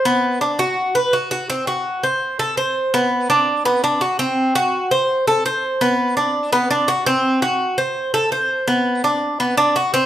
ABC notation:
X:1
M:4/4
L:1/8
Q:1/4=167
K:Bphr
V:1 name="Cuban tres"
B,2 D F2 B F F | C F2 c2 A c2 | B,2 D2 B, D F C- | C F2 c2 A c2 |
B,2 D2 B, D F C- | C F2 c2 A c2 | B,2 D2 B, D F C |]